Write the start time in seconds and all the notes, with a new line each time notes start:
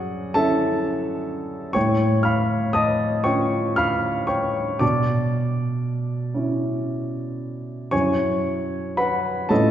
Already playing: F#2 F#4 G#4 C#5 D5 F#5 G#5
0.34 C#4 E4 A4 E5 A5
1.73 A2 C#5 G5 C#6
2.23 F5 B5 F6
2.73 D#5 A5 D#6
3.24 C#4 F4 C#5 G5 C#6
3.76 F5 B5 F6
4.27 C#5 G5 C#6
4.79 B2 D5 A5 D6
6.34 C#4 E4
7.91 F#2 C#4 E4 C#5 G#5 C#6
8.97 B4 F#5 B5
9.49 A2 C#4 F4 A4 D#5 A5